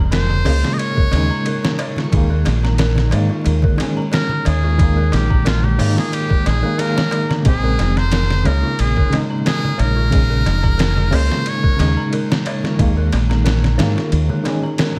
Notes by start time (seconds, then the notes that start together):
Already playing: F1 C#3 G#3 D#4 F4 A#4 C#5 A#5
0.12 A#4 C5, snare, ride, darbuka tek
0.30 darbuka dum
0.45 C#2 C#3 G#3 A#3 C#5, open hi-hat, darbuka tek
0.64 F4, snare, darbuka tek
0.73 D#5
0.78 C#5, ride, darbuka tek
0.96 A#4, kick, darbuka tek
1.11 D#2 C#3 G#3, snare, ride, darbuka tek
1.17 D#4
1.29 A#5, darbuka tek
1.45 A#4, ride, darbuka tek
1.63 snare, darbuka tek
1.79 C#5, ride, darbuka tek
1.96 F4, snare, darbuka tek, darbuka dum
2.11 D#2 D#3 G#3 D#4, kick, ride, darbuka tek
2.16 A#3
2.30 A#4, darbuka tek
2.45 A#1, snare, ride, darbuka tek
2.63 A#5, snare, darbuka tek
2.78 A#4, snare, ride, darbuka tek
2.95 snare, darbuka dum
3.11 G#2 D#3 G#3 A#3 C#5, ride, darbuka tek
3.29 F4, darbuka tek
3.45 D#2, ride, darbuka tek
3.62 A#4, kick, darbuka tek, darbuka dum
3.77 D#3 G#3, snare, ride, darbuka tek
3.83 C#4
3.97 A#5, darbuka tek
4.12 A#4, snare, ride, darbuka tek
4.29 darbuka tek, darbuka dum
4.45 D#2 G#4 C#5, ride, darbuka tek
4.63 F4, darbuka tek
4.78 D#3 G#3 D#4, kick, ride, darbuka tek
4.83 A#3
4.97 A#4, darbuka tek
5.12 A#1 G4, snare, ride, darbuka tek
5.30 A#5, kick, darbuka tek
5.45 F4 A#4, snare, ride, darbuka tek
5.63 G4, darbuka dum
5.78 G#2 D#3 G#3 A#3 C#5, open hi-hat, darbuka tek
5.96 F4 G#4, snare, darbuka tek
6.12 G4, ride, darbuka tek
6.29 A#4, kick, darbuka tek
6.46 A#1 G#4, snare, ride, darbuka tek
6.62 D#3 G#3 A#3 A#4, darbuka tek
6.78 D#3 G#3 A#3 A#4, ride, darbuka tek
6.96 C#5, snare, darbuka tek
7.11 A#4, ride, darbuka tek
7.29 A#5, snare, darbuka tek, darbuka dum
7.43 A#1 C#3 G#3 A#4, kick, ride, darbuka tek
7.48 C4 G#4
7.63 A#4, darbuka tek
7.79 F1, snare, ride, darbuka tek
7.97 C5 A#5, snare, darbuka tek
8.12 A#4, snare, ride, darbuka tek
8.30 snare, darbuka dum
8.44 C#2 C#3 G#3 A#3 A#4 C#5, ride, darbuka tek
8.63 F4, darbuka tek
8.79 A#1 G#4, ride, darbuka tek
8.97 A#4, kick, darbuka tek, darbuka dum
9.10 C#3 G#3, snare, ride, darbuka tek
9.16 D#4
9.30 A#5, darbuka tek
9.45 G#4 A#4, snare, ride, darbuka tek
9.64 darbuka tek, darbuka dum
9.78 A#1 A#4 C#5, ride, darbuka tek
9.96 F4, darbuka tek
10.10 C#3 G#3, kick, ride, darbuka tek
10.30 A#4, darbuka tek
10.46 F1, snare, ride, darbuka tek
10.63 A#5, kick, darbuka tek
10.78 A#4, snare, ride, darbuka tek
10.97 darbuka dum
11.11 C#2 C#3 G#3 A#3 C5 C#5, open hi-hat, darbuka tek
11.30 F4, snare, darbuka tek
11.46 C#5, ride, darbuka tek
11.63 A#4, kick, darbuka tek
11.76 D#2 C#3 G#3, ride, darbuka tek
11.81 D#4, snare
11.97 A#5, darbuka tek
12.13 A#4, ride, darbuka tek
12.30 snare, darbuka tek
12.46 C#5, ride, darbuka tek
12.63 F4, snare, darbuka tek, darbuka dum
12.76 D#2 D#3 G#3 D#4, kick, ride, darbuka tek
12.81 A#3
12.97 A#4, darbuka tek
13.12 A#1, snare, ride, darbuka tek
13.29 A#5, snare, darbuka tek
13.44 A#4, snare, ride, darbuka tek
13.64 snare, darbuka dum
13.78 G#2 D#3 G#3 A#3 C#5, snare, ride, darbuka tek
13.96 F4, snare, darbuka tek
14.12 D#2, ride, darbuka tek
14.29 A#4, darbuka tek, darbuka dum
14.43 D#3 G#3, snare, ride, darbuka tek
14.49 C#4
14.63 A#5, darbuka tek
14.78 A#4, snare, ride, darbuka tek